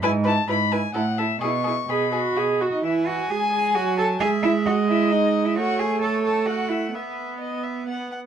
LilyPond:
<<
  \new Staff \with { instrumentName = "Violin" } { \time 3/4 \key e \major \tempo 4 = 130 gis''8 a''8 b''8 gis''8 fis''8 e''8 | cis'''4 b''4. r16 dis''16 | e''8 fis''8 gis''8 gis''8 fis''8 a''8 | gis''8 e''8 fis''8 e''8 dis''8. e''16 |
fis''8 gis''8 a''8 a''8 fis''8 e''8 | b'2~ b'8 r8 | }
  \new Staff \with { instrumentName = "Violin" } { \time 3/4 \key e \major b'8 b'8 b'8 b'8 a'8 a'8 | gis'8 gis'8 gis'8 gis'8 fis'8 fis'8 | gis''2. | e''4 dis''2 |
cis''4 cis''4 fis''4 | e''4 dis''8 e''8 fis''8 fis''8 | }
  \new Staff \with { instrumentName = "Cello" } { \time 3/4 \key e \major gis,4 gis,4 a,4 | b,4 b,4 b,8. dis'16 | e'8 fis'8 gis'8 gis'8 fis'8 a'8 | gis'8 e'8 fis'8 e'8 dis'8. e'16 |
fis'8 gis'8 a'8 a'8 fis'8 e'8 | b2~ b8 r8 | }
  \new Staff \with { instrumentName = "Viola" } { \time 3/4 \key e \major e'8 e'8 e'8 e'8 e'8 e'8 | e'8 e'8 gis'8 fis'8 gis'8 fis'8 | e4 gis4 fis4 | gis2. |
a2. | b2 b8 r8 | }
>>